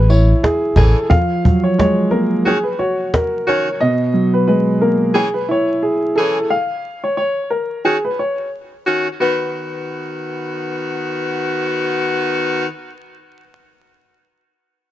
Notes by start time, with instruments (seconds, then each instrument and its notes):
Already playing: upright bass A1
0.09 grand piano E4, upright piano C#5, tambourine
0.43 grand piano G#4, cajon slap
0.76 upright bass A1, saxophone section E3 C#4 G#4, grand piano A4, cajon bass, tambourine
1.10 grand piano F3, upright piano F5, cajon bass
1.45 grand piano F#3, cajon bass
1.64 upright piano C#5
1.78 grand piano G#3, upright piano C#5, cajon slap
2.10 grand piano A#3, upright piano A#4, cajon slap
2.46 saxophone section D#3 C#4 F#4, upright piano G#4, cajon slap
2.63 upright piano B4
2.79 grand piano F#4, upright piano C#5, cajon slap
3.14 grand piano A#4, cajon slap
3.47 saxophone section D#3 C#4 F#4, grand piano C#5, cajon slap
3.80 grand piano B2, upright piano D#5
4.14 grand piano F#3
4.34 upright piano B4
4.48 grand piano G#3, upright piano B4
4.81 grand piano A#3, upright piano A#4
5.14 saxophone section E3 C#4 G#4, upright piano G#4
5.34 upright piano B4
5.49 grand piano E4, upright piano C#5
5.83 grand piano G#4
6.16 saxophone section E3 C#4 G#4, grand piano A4
6.50 upright piano F5
7.04 upright piano C#5
7.17 upright piano C#5
7.50 upright piano A#4
7.85 saxophone section D#3 C#4 F#4, upright piano G#4
8.05 upright piano B4
8.19 upright piano C#5
8.86 saxophone section D#3 C#4 F#4
9.20 saxophone section D#3 B3 F#4, upright piano B4